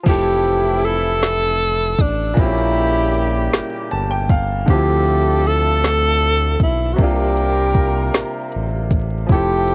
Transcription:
0.03 analog synth bass F1, horn section C3 E3 A3 E4, grand piano F3 E4, kick, closed hi-hat, crash
0.08 grand piano G4 A4, tenor saxophone G4
0.45 closed hi-hat
0.83 tenor saxophone A4, closed hi-hat
1.23 snare, closed hi-hat
1.60 closed hi-hat
1.99 analog synth bass A1, tenor saxophone D4, kick, closed hi-hat
2.34 grand piano A#2 A#3, horn section C#3 G3 A#3 G4, kick, closed hi-hat
2.38 analog synth bass A#1, grand piano C4 G4, tenor saxophone E4
2.45 grand piano C#4
2.75 closed hi-hat
3.14 closed hi-hat
3.53 analog synth bass G1, snare, closed hi-hat
3.91 analog synth bass G1, grand piano A5, closed hi-hat
4.11 grand piano G5
4.29 grand piano F5, kick, closed hi-hat
4.66 analog synth bass D2, grand piano D3 C4, horn section F3 A3 E4 A4, kick, closed hi-hat
4.70 grand piano F3 E4, tenor saxophone G4
5.06 closed hi-hat
5.45 tenor saxophone A4, closed hi-hat
5.84 snare, closed hi-hat
6.21 closed hi-hat
6.60 analog synth bass B1, tenor saxophone E4, kick, closed hi-hat
6.94 grand piano C3, tenor saxophone F#4
6.98 analog synth bass C2, horn section G3 A#3 F4 A#4, grand piano A#3 D4, tenor saxophone G4, kick, closed hi-hat
7.04 grand piano F4
7.37 closed hi-hat
7.75 kick, closed hi-hat
8.14 analog synth bass A1, snare, closed hi-hat
8.52 analog synth bass A1, closed hi-hat
8.91 kick, closed hi-hat
9.27 analog synth bass F1, grand piano F3 E4, horn section A3 C4 G4 C5, kick, closed hi-hat
9.31 grand piano G4 A4, tenor saxophone G4
9.68 closed hi-hat

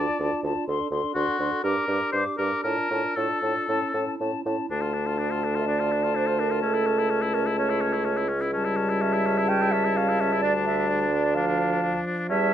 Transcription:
Already playing: french horn D4, clarinet F4, oboe D5, flute A5
0.19 bassoon D2, french horn D4, clarinet F4, flute A5
0.43 bassoon D2, french horn D4, clarinet F4, flute A5
0.67 bassoon D2, french horn D4, clarinet A4, flute C6
0.91 bassoon D2, french horn D4, clarinet A4, flute C6
1.15 bassoon D2, french horn D4, oboe F#4, clarinet A4, flute C6
1.39 bassoon D2, french horn D4, clarinet A4, flute C6
1.63 bassoon G2, french horn D4, clarinet G4, oboe A#4, flute D6
1.88 bassoon G2, french horn D4, clarinet G4, flute D6
2.12 bassoon G2, french horn D4, clarinet G4, oboe C5, flute D6
2.37 bassoon G2, french horn D4, clarinet G4, oboe A#4, flute D6
2.64 bassoon A2, french horn D4, clarinet F4, oboe A#4, flute A5
2.91 bassoon A2, french horn D4, clarinet F4, flute A5
3.16 bassoon A2, french horn D4, clarinet F4, oboe A4, flute A5
3.42 bassoon A2, french horn D4, clarinet F4, flute A5
3.68 bassoon A2, french horn C#4, clarinet E4, flute A5
3.92 bassoon A2, french horn C#4, clarinet E4, flute A5
4.19 bassoon A2, french horn C#4, clarinet E4, flute A5
4.45 bassoon A2, french horn C#4, clarinet E4, flute A5
4.70 bassoon D2, french horn A3, oboe D4, flute A5
4.81 oboe F4
4.94 oboe D4
5.07 oboe F4
5.18 oboe D4, clarinet A4
5.31 oboe F4
5.44 oboe D4
5.55 oboe F4
5.61 clarinet E5
5.67 oboe D4, clarinet D5
5.80 oboe F4
5.92 oboe D4
6.04 oboe F4
6.15 oboe D4, clarinet C5
6.27 oboe F4
6.39 oboe D4, clarinet A#4
6.51 oboe F4
6.62 bassoon C#2, oboe C#4, clarinet A4
6.74 oboe E4
6.86 oboe C#4
6.99 oboe E4
7.10 oboe C#4, clarinet A4
7.22 oboe E4
7.33 oboe C#4, clarinet A#4
7.46 oboe E4
7.57 oboe C#4, clarinet C#5
7.70 oboe E4
7.81 oboe C#4
7.93 oboe E4
8.05 oboe C#4
8.17 oboe E4
8.29 oboe C#4
8.41 oboe E4
8.53 french horn G3, oboe C#4, flute A5
8.65 oboe E4
8.77 oboe C#4
8.89 oboe E4
9.01 oboe C#4, clarinet E5
9.13 oboe E4
9.26 oboe C#4
9.38 oboe E4
9.49 oboe C#4, clarinet G5
9.62 oboe E4
9.71 oboe C#4, clarinet E5
9.85 oboe E4
9.96 oboe C#4, clarinet F5
10.09 oboe E4
10.20 oboe C#4, clarinet E5
10.33 oboe E4
10.42 bassoon D2, oboe D4, clarinet D5
10.55 oboe D4
10.66 oboe D4, clarinet E5
10.77 oboe D4
10.88 oboe D4, clarinet D5
11.01 oboe D4
11.14 oboe D4
11.24 oboe D4
11.35 french horn F3, oboe D4, clarinet F5
11.47 oboe D4
11.60 oboe D4
11.71 oboe D4
11.82 oboe D4
11.95 oboe D4
12.06 oboe D4
12.18 oboe D4
12.29 bassoon E2, french horn G3, oboe C#4, clarinet E5, flute A5
12.41 oboe C#4

